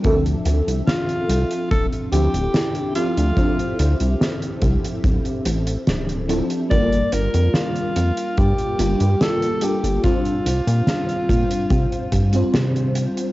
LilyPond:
<<
  \new Staff \with { instrumentName = "Alto saxophone" } { \time 4/4 \key d \minor \tempo 4 = 72 r4 f'4 a'8 g'4 f'8~ | f'4 r2. | d''8 bes'8 f'4 g'4 a'8 g'8 | f'2. r4 | }
  \new Staff \with { instrumentName = "FM electric piano" } { \time 4/4 \key d \minor <f c' d' a' e''>2~ <f c' d' a' e''>8 <f c' d' e' g'>4 <f c' d' a' e''>8 | <f c' d' e' c''>16 r2. r16 <f c' d' e' a'>8 | <g bes d' f' bes'>2~ <g bes d' f' bes'>8 <g bes d' f' g'>4 <g bes d' f' a'>8 | <g c' d' f' c''>16 r2 r8 <g c' d' f' c''>4~ <g c' d' f' c''>16 | }
  \new Staff \with { instrumentName = "Analog synth bass" } { \clef bass \time 4/4 \key d \minor d,16 r16 d,16 c,16 r8 c,16 r16 d,,16 r16 d,16 d,,16 r8. d,16 | r8 d,16 c,16 r8 c,16 r16 d,,16 r16 a,,16 r16 d,,8. r16 | g,,16 r16 g,,16 f,16 r8 f,16 r16 g,16 r16 g,,16 g,16 r8. g,,16 | r8 c,16 bes,16 r8 bes,16 r16 c16 r16 g,16 r16 c8. r16 | }
  \new DrumStaff \with { instrumentName = "Drums" } \drummode { \time 4/4 <hh bd>16 hh16 hh16 hh16 <hh sn>16 hh16 hh16 hh16 <hh bd>16 hh16 hh16 hh16 <hh sn>16 hh16 hh16 hh16 | <hh bd>16 hh16 hh16 hh16 <hh sn>16 hh16 <hh bd>16 hh16 <hh bd>16 hh16 hh16 hh16 <hh sn>16 hh16 hh16 hh16 | <hh bd>16 hh16 hh16 hh16 <hh sn>16 hh16 hh16 hh16 <hh bd>16 hh16 hh16 hh16 <hh sn>16 hh16 hh16 hh16 | <hh bd>16 hh16 hh16 hh16 <hh sn>16 hh16 <hh bd>16 hh16 <hh bd>16 hh16 <hh bd>16 hh16 <hh sn>16 hh16 hh16 hh16 | }
>>